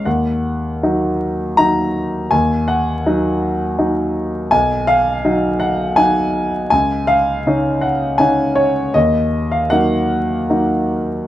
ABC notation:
X:1
M:3/4
L:1/16
Q:1/4=80
K:D#m
V:1 name="Grand piano"
f8 a4 | g2 f6 z4 | g2 e4 f2 g4 | g2 e4 f2 g2 c2 |
d3 e f8 |]
V:2 name="Grand piano" clef=bass
D,,4 [F,D]4 [F,D]4 | D,,4 [F,D]4 [F,D]4 | B,,,4 [F,D]4 [F,D]4 | C,,4 [C,CD]4 [C,CD]4 |
D,,4 [F,A,D]4 [F,A,D]4 |]